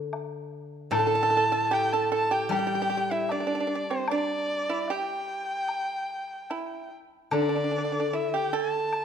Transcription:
Already playing: guzheng D3
0.13 high woodblock, low woodblock
0.91 guzheng A2, pipa A4, erhu A5, high woodblock
0.99 pipa A4
1.07 pipa A4
1.15 pipa A4
1.23 pipa A4
1.30 pipa A4
1.37 pipa A4
1.52 pipa A4
1.71 pipa G4, erhu G5
1.93 pipa A4, erhu A5
2.12 pipa A4, erhu A5
2.31 pipa G4, erhu G5
2.49 guzheng G3, pipa G4, erhu G5, high woodblock
2.59 pipa G4
2.67 pipa G4
2.75 pipa G4
2.82 pipa G4
2.90 pipa G4
2.97 pipa G4
3.11 pipa E4, erhu E5
3.29 pipa D4, erhu D5, high woodblock, low woodblock
3.40 pipa D4
3.47 pipa D4
3.55 pipa D4
3.60 pipa D4
3.67 pipa D4
3.75 pipa D4
3.90 pipa C4, erhu C5
4.08 pipa D4, erhu D5, high woodblock
4.69 pipa E4
4.88 pipa G4, erhu G5, low woodblock
5.68 high woodblock
6.50 pipa E4, high woodblock
7.31 guzheng D3, pipa D4, erhu D5, high woodblock
7.42 pipa D4
7.49 pipa D4
7.56 pipa D4
7.64 pipa D4
7.71 pipa D4
7.78 pipa D4
7.85 pipa D4
7.92 pipa D4
8.00 pipa D4
8.13 pipa E4, erhu E5
8.34 pipa G4, erhu G5
8.53 pipa A4, erhu A5
8.93 high woodblock

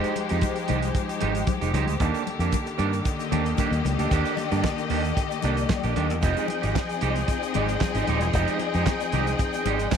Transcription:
Already playing: string section F3 G#3 D#4 G4 C5, clean electric guitar G#3 D#4 G4
0.04 closed hi-hat, shaker
0.15 muted clean electric guitar stroke, closed hi-hat, muted conga
0.29 fingered electric bass F2, clean electric guitar G#3 D#4 G4, closed hi-hat, shaker
0.41 kick, closed hi-hat, high conga, shaker
0.56 muted clean electric guitar stroke, closed hi-hat, shaker
0.68 fingered electric bass C2, clean electric guitar G#3 D#4 G4, closed hi-hat, low conga, shaker
0.82 muted clean electric guitar stroke, closed hi-hat, shaker
0.95 muted clean electric guitar stroke, kick, closed hi-hat, shaker
1.09 muted clean electric guitar stroke, closed hi-hat, shaker
1.20 fingered electric bass G#1, clean electric guitar G#3 D#4 G4, closed hi-hat, muted conga
1.34 muted clean electric guitar stroke, closed hi-hat, shaker
1.47 muted clean electric guitar stroke, kick, closed hi-hat, high conga, shaker
1.61 fingered electric bass F1, clean electric guitar G#3 D#4 G4, closed hi-hat, shaker
1.73 fingered electric bass C#2, clean electric guitar G#3 D#4 G4, closed hi-hat, high conga, shaker
1.87 fingered electric bass D2, muted clean electric guitar stroke, closed hi-hat, shaker
2.00 fingered electric bass D#2, string section D3 D#3 A#3, clean electric guitar A#3 D4 G4, kick, closed hi-hat, shaker
2.14 closed hi-hat, shaker
2.26 muted clean electric guitar stroke, closed hi-hat, muted conga
2.39 fingered electric bass F2, clean electric guitar A#3 D4 G4, closed hi-hat, shaker
2.52 kick, closed hi-hat, high conga, shaker
2.66 muted clean electric guitar stroke, closed hi-hat, shaker
2.78 fingered electric bass G2, clean electric guitar A#3 D4 G4, closed hi-hat, shaker
2.93 muted clean electric guitar stroke, closed hi-hat, shaker
3.05 string section A#3 G4 D#5, muted clean electric guitar stroke, kick, closed hi-hat, shaker
3.19 muted clean electric guitar stroke, closed hi-hat, shaker
3.31 fingered electric bass D#2, clean electric guitar A#3 D4 G4, closed hi-hat, muted conga, low conga
3.46 muted clean electric guitar stroke, closed hi-hat, shaker
3.58 clean electric guitar A#3 D4 G4, kick, closed hi-hat, high conga, shaker
3.71 fingered electric bass D#2, muted clean electric guitar stroke, closed hi-hat, shaker
3.85 fingered electric bass C#2, muted clean electric guitar stroke, closed hi-hat, high conga, shaker
3.99 fingered electric bass D2, clean electric guitar A#3 D4 G4, closed hi-hat, shaker
4.11 fingered electric bass D#2, clean electric guitar A#3 D4 G4, kick, closed hi-hat, muted conga, shaker
4.25 closed hi-hat, shaker
4.37 muted clean electric guitar stroke, closed hi-hat, muted conga, shaker
4.51 fingered electric bass G2, clean electric guitar A#3 D4 G4, closed hi-hat, shaker
4.64 kick, snare, clap, high conga, shaker
4.78 muted clean electric guitar stroke, closed hi-hat, shaker
4.90 fingered electric bass D#2, clean electric guitar A#3 D4 G4, open hi-hat, low conga, shaker
5.04 muted clean electric guitar stroke, closed hi-hat, shaker
5.17 muted clean electric guitar stroke, kick, closed hi-hat, shaker
5.31 muted clean electric guitar stroke, closed hi-hat, shaker
5.42 fingered electric bass C2, clean electric guitar A#3 D4 G4, closed hi-hat, muted conga, shaker
5.57 muted clean electric guitar stroke, closed hi-hat, shaker
5.69 muted clean electric guitar stroke, kick, snare, clap, high conga, shaker
5.83 fingered electric bass A#1, clean electric guitar A#3 D4 G4, closed hi-hat, shaker
5.96 fingered electric bass D#2, clean electric guitar A#3 D4 G4, closed hi-hat, high conga
6.10 fingered electric bass E2, muted clean electric guitar stroke, closed hi-hat, shaker
6.22 fingered electric bass F1, string section F3 C4 D#4 G#4 D#5 G5, clean electric guitar G#3 D#4 G4, kick, closed hi-hat, muted conga, shaker
6.37 closed hi-hat, shaker
6.48 muted clean electric guitar stroke, closed hi-hat, muted conga
6.62 fingered electric bass G#1, clean electric guitar G#3 D#4 G4, closed hi-hat, shaker
6.76 kick, snare, clap, high conga, shaker
6.89 muted clean electric guitar stroke, closed hi-hat, shaker
7.01 fingered electric bass C2, clean electric guitar G#3 D#4 G4, closed hi-hat, shaker
7.16 muted clean electric guitar stroke, closed hi-hat, shaker
7.28 muted clean electric guitar stroke, kick, closed hi-hat, shaker
7.43 muted clean electric guitar stroke, closed hi-hat, shaker
7.54 fingered electric bass G#1, clean electric guitar G#3 D#4 G4, closed hi-hat, muted conga, low conga
7.69 muted clean electric guitar stroke, closed hi-hat, shaker
7.81 muted clean electric guitar stroke, kick, snare, clap, high conga, shaker
7.94 fingered electric bass G#1, clean electric guitar G#3 D#4 G4, closed hi-hat, shaker
8.07 fingered electric bass D#1, clean electric guitar G#3 D#4 G4, closed hi-hat, high conga, shaker
8.21 fingered electric bass E1, muted clean electric guitar stroke, closed hi-hat, shaker
8.34 fingered electric bass F1, clean electric guitar G#3 D#4 G4, kick, closed hi-hat, muted conga, shaker
8.48 closed hi-hat, shaker
8.59 muted clean electric guitar stroke, closed hi-hat, muted conga
8.74 fingered electric bass F2, clean electric guitar G#3 D#4 G4, closed hi-hat, shaker
8.86 kick, snare, clap, high conga, shaker
9.00 muted clean electric guitar stroke, closed hi-hat, shaker
9.12 fingered electric bass C2, clean electric guitar G#3 D#4 G4, closed hi-hat, low conga, shaker
9.27 muted clean electric guitar stroke, closed hi-hat, shaker
9.39 muted clean electric guitar stroke, kick, closed hi-hat, shaker
9.53 muted clean electric guitar stroke, closed hi-hat, shaker
9.65 fingered electric bass G#1, clean electric guitar G#3 D#4 G4, closed hi-hat, muted conga
9.79 muted clean electric guitar stroke, closed hi-hat, shaker
9.92 muted clean electric guitar stroke, kick, snare, clap, high conga, shaker

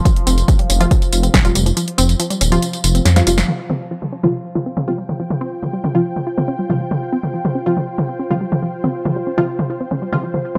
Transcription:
Already playing: synth drone F3 F4
0.05 synth arpeggio sound F3, kick, closed hi-hat, tambourine
0.16 closed hi-hat
0.27 detuned saw bass F1, synth arpeggio sound C4, open hi-hat, tambourine
0.38 closed hi-hat, tambourine
0.48 synth arpeggio sound F3, kick, closed hi-hat, tambourine
0.59 synth arpeggio sound G3, closed hi-hat
0.70 detuned saw bass F1, synth arpeggio sound C#4, open hi-hat, tambourine
0.80 synth stab C3 F3 F4, synth arpeggio sound F3, closed hi-hat, tambourine
0.91 kick, closed hi-hat, tambourine
1.02 closed hi-hat, tambourine
1.12 detuned saw bass F1, synth arpeggio sound F4, open hi-hat, tambourine
1.23 synth arpeggio sound C4, closed hi-hat, tambourine
1.34 detuned saw bass D#1, synth arpeggio sound C#4, kick, snare, closed hi-hat, tambourine
1.45 synth stab C3 F3 F4, synth arpeggio sound G3, closed hi-hat, tambourine
1.55 detuned saw bass F1, synth arpeggio sound G3, open hi-hat, tambourine
1.66 synth arpeggio sound F3, closed hi-hat, tambourine
1.77 synth arpeggio sound F3, closed hi-hat, tambourine
1.88 closed hi-hat
1.98 detuned saw bass F1, synth arpeggio sound C4, open hi-hat, tambourine
2.09 closed hi-hat, tambourine
2.20 synth arpeggio sound F3, closed hi-hat, tambourine
2.30 synth arpeggio sound G3, closed hi-hat, tambourine
2.41 detuned saw bass D#1, synth arpeggio sound C#4, open hi-hat, tambourine
2.52 synth stab C3 F3 F4, synth arpeggio sound F3, closed hi-hat, tambourine
2.62 closed hi-hat, tambourine
2.73 closed hi-hat, tambourine
2.84 detuned saw bass F1, synth arpeggio sound F4, open hi-hat, tambourine
2.95 synth arpeggio sound C4, closed hi-hat, tambourine
3.05 detuned saw bass F2, synth arpeggio sound C#4, snare, closed hi-hat, tambourine
3.16 synth stab C3 F3 F4, synth arpeggio sound G3, snare, closed hi-hat, tambourine
3.27 detuned saw bass F1, synth stab C3 F3 F4, synth arpeggio sound G3, open hi-hat, tambourine
3.38 synth arpeggio sound F3, snare, closed hi-hat, tambourine
3.48 synth arpeggio sound F3, ambient pad F4 C5, mid tom, crash
3.69 synth arpeggio sound C4, mid tom
3.91 synth arpeggio sound F3
4.00 synth arpeggio sound G3, ambient pad G5, mid tom
4.12 synth arpeggio sound C#4
4.23 synth stab C3 F3 F4, synth arpeggio sound F3, mid tom
4.55 synth arpeggio sound F4, mid tom
4.66 synth arpeggio sound C4
4.77 synth arpeggio sound C#4, mid tom
4.88 synth stab C3 F3 F4, synth arpeggio sound G3
4.98 synth arpeggio sound G3
5.09 synth arpeggio sound F3, mid tom
5.20 synth arpeggio sound F3
5.30 mid tom
5.41 synth arpeggio sound C4
5.63 synth arpeggio sound F3, mid tom
5.73 synth arpeggio sound G3
5.84 synth arpeggio sound C#4, mid tom
5.95 synth stab C3 F3 F4, synth arpeggio sound F3
6.16 mid tom
6.27 synth arpeggio sound F4
6.38 synth arpeggio sound C4, mid tom
6.48 synth arpeggio sound C#4
6.59 synth arpeggio sound G3
6.70 synth stab C3 F3 F4, synth arpeggio sound G3, mid tom
6.80 synth arpeggio sound F3
6.91 synth arpeggio sound F3, mid tom
7.13 synth arpeggio sound C4
7.23 mid tom
7.34 synth arpeggio sound F3
7.45 synth arpeggio sound G3, mid tom
7.55 synth arpeggio sound C#4
7.66 synth stab C3 F3 F4, synth arpeggio sound F3
7.77 mid tom
7.98 synth arpeggio sound F4, mid tom
8.09 synth arpeggio sound C4
8.19 synth arpeggio sound C#4
8.30 synth stab C3 F3 F4, synth arpeggio sound G3, mid tom
8.41 synth arpeggio sound G3
8.52 synth arpeggio sound F3, mid tom
8.62 synth arpeggio sound F3
8.84 synth arpeggio sound C4, mid tom
9.05 synth arpeggio sound F3, mid tom
9.16 synth arpeggio sound G3
9.27 synth arpeggio sound C#4
9.38 synth stab C3 F3 F4, synth arpeggio sound F3, mid tom
9.59 mid tom
9.70 synth arpeggio sound F4
9.80 synth arpeggio sound C4
9.91 synth arpeggio sound C#4, mid tom
10.02 synth arpeggio sound G3
10.13 synth stab C3 F3 F4, synth arpeggio sound G3, mid tom
10.23 synth arpeggio sound F3
10.34 synth arpeggio sound F3, mid tom
10.55 synth arpeggio sound C4

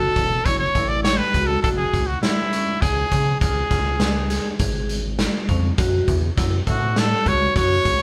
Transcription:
Already playing: vibraphone F#4, trumpet A4
0.16 analog synth bass E1, kick, closed hi-hat
0.45 analog synth bass F#1, vibraphone E4, trumpet C#5, kick, closed hi-hat
0.59 trumpet C#5
0.75 analog synth bass A1, vibraphone E4, kick, closed hi-hat
0.88 trumpet D5
1.03 trumpet C#5, snare, closed hi-hat
1.18 trumpet B4
1.34 analog synth bass C#2, vibraphone F#4, kick, closed hi-hat
1.47 trumpet A4
1.62 analog synth bass F#1, vibraphone F#4, trumpet A4, kick, closed hi-hat
1.77 trumpet G#4
1.93 analog synth bass C#2, kick, closed hi-hat
2.07 trumpet F#4
2.22 trumpet E4, vibraphone E4, snare, closed hi-hat
2.52 vibraphone C#4, closed hi-hat
2.81 analog synth bass C#2, trumpet G#4, vibraphone G#4, kick, closed hi-hat
3.11 analog synth bass C#3, kick, closed hi-hat
3.41 analog synth bass C#2, vibraphone F4, trumpet G#4, kick, closed hi-hat
3.71 analog synth bass C#2, vibraphone F4, kick, snare, closed hi-hat
4.00 snare, closed hi-hat
4.30 vibraphone G#4, snare, closed hi-hat
4.59 analog synth bass G#1, vibraphone G#4, kick, closed hi-hat
4.89 closed hi-hat
5.19 vibraphone F4, snare, closed hi-hat
5.48 analog synth bass F2, vibraphone C#4, kick, closed hi-hat
5.78 analog synth bass F#2, vibraphone F#4, kick, closed hi-hat
6.08 analog synth bass E2, kick, closed hi-hat
6.37 analog synth bass F#2, vibraphone E4, kick, snare, closed hi-hat
6.67 analog synth bass A2, vibraphone E4, trumpet F#4, kick, closed hi-hat
6.96 trumpet A4, snare, closed hi-hat
7.26 analog synth bass C#2, vibraphone F#4, trumpet C#5, kick, closed hi-hat
7.56 analog synth bass F#2, vibraphone F#4, trumpet C#5, kick, closed hi-hat
7.85 analog synth bass C#2, kick, closed hi-hat

